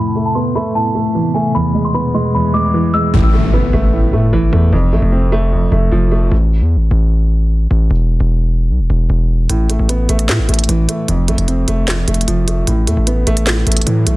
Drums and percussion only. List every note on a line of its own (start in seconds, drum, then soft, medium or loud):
9.50 closed hi-hat medium
9.70 closed hi-hat medium
9.89 closed hi-hat medium
10.09 closed hi-hat soft
10.19 closed hi-hat medium
10.29 snare loud
10.29 clap loud
10.29 closed hi-hat medium
10.49 closed hi-hat soft
10.54 closed hi-hat medium
10.59 closed hi-hat medium
10.64 closed hi-hat medium
10.69 closed hi-hat medium
10.89 closed hi-hat medium
11.08 closed hi-hat medium
11.28 closed hi-hat medium
11.38 closed hi-hat medium
11.48 closed hi-hat medium
11.68 closed hi-hat medium
11.88 snare loud
11.88 clap loud
11.88 closed hi-hat medium
12.08 closed hi-hat medium
12.14 closed hi-hat medium
12.21 closed hi-hat medium
12.28 closed hi-hat medium
12.48 closed hi-hat medium
12.67 closed hi-hat medium
12.87 closed hi-hat medium
13.07 closed hi-hat medium
13.27 closed hi-hat soft
13.37 closed hi-hat medium
13.47 snare loud
13.47 clap medium
13.47 closed hi-hat medium
13.67 closed hi-hat soft
13.72 closed hi-hat medium
13.77 closed hi-hat medium
13.82 closed hi-hat medium
13.87 closed hi-hat medium
14.07 closed hi-hat medium